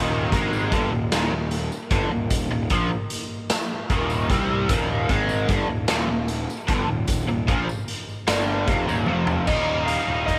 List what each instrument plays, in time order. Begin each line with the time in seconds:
Already playing: picked electric bass D#1, overdriven electric guitar D#2 A#2 D#3, string machine A#3 G4 A#4 D#5
0.32 picked electric bass G#1, overdriven electric guitar G#2 D#3 G#3, kick, closed hi-hat
0.53 tambourine
0.72 picked electric bass G1, overdriven electric guitar G2 D3, kick, closed hi-hat, tambourine
0.92 picked electric bass D#1, overdriven electric guitar D#2 A#2
1.12 picked electric bass D#1, overdriven electric guitar D#2 A#2, snare, closed hi-hat, tambourine
1.32 picked electric bass D#1, overdriven electric guitar D#2 A#2
1.51 closed hi-hat
1.72 tambourine
1.91 picked electric bass G1, overdriven electric guitar G2 D3, kick, closed hi-hat
2.11 picked electric bass D#1, overdriven electric guitar D#2 A#2
2.30 kick, closed hi-hat, tambourine
2.51 picked electric bass D#1, overdriven electric guitar D#2 A#2
2.70 picked electric bass A#1, overdriven electric guitar A#2 F3, kick, closed hi-hat
3.10 closed hi-hat, tambourine
3.50 snare, closed hi-hat, tambourine
3.90 picked electric bass D#1, overdriven electric guitar D#2 A#2 D#3, kick, closed hi-hat
4.10 tambourine
4.30 picked electric bass C2, overdriven electric guitar C3 G3 C4, kick, closed hi-hat
4.69 picked electric bass D#1, overdriven electric guitar D#2 A#2 D#3, kick, closed hi-hat, tambourine
5.09 picked electric bass G#1, overdriven electric guitar G#2 D#3 G#3, kick, closed hi-hat
5.29 tambourine
5.49 picked electric bass G1, overdriven electric guitar G2 D3, kick, closed hi-hat, tambourine
5.68 picked electric bass D#1, overdriven electric guitar D#2 A#2
5.88 picked electric bass D#1, overdriven electric guitar D#2 A#2, snare, closed hi-hat, tambourine
6.09 picked electric bass D#1, overdriven electric guitar D#2 A#2
6.28 closed hi-hat
6.50 tambourine
6.68 picked electric bass G1, overdriven electric guitar G2 D3, kick, closed hi-hat
6.88 picked electric bass D#1, overdriven electric guitar D#2 A#2
7.08 kick, closed hi-hat, tambourine
7.28 picked electric bass D#1, overdriven electric guitar D#2 A#2
7.48 picked electric bass A#1, overdriven electric guitar A#2 F3, kick, closed hi-hat
7.69 tambourine
7.88 closed hi-hat
8.08 tambourine
8.27 picked electric bass G1, overdriven electric guitar G2 D3 G3, snare, closed hi-hat, tambourine
8.67 picked electric bass F1, overdriven electric guitar F2 C3, kick, closed hi-hat
8.87 picked electric bass D#1, overdriven electric guitar D#2 A#2, tambourine
9.06 picked electric bass F1, overdriven electric guitar F2 C3 F3, high tom
9.27 floor tom, tambourine
9.46 picked electric bass D#1, overdriven electric guitar D#2 A#2 D#3 G3 A#3 D#4, electric slide guitar D#5, kick, crash
9.86 overdriven electric guitar D#3 G3 A#3 D#4, electric slide guitar F5, closed hi-hat
10.08 picked electric bass D#1
10.26 overdriven electric guitar D#3 G3 A#3 D#4, electric slide guitar D#5, kick, closed hi-hat